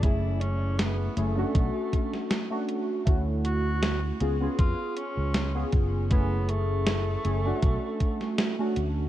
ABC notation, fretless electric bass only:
X:1
M:4/4
L:1/16
Q:"Swing 16ths" 1/4=79
K:F#m
V:1 name="Fretless electric bass" clef=bass
F,,,4- F,,, z F,,, z B,,, z6 z | D,,4- D,, z C,, z ^E,, z2 C,,2 z F,,,2- | F,,,4- F,,, z F,,, z B,,, z4 z D,,2 |]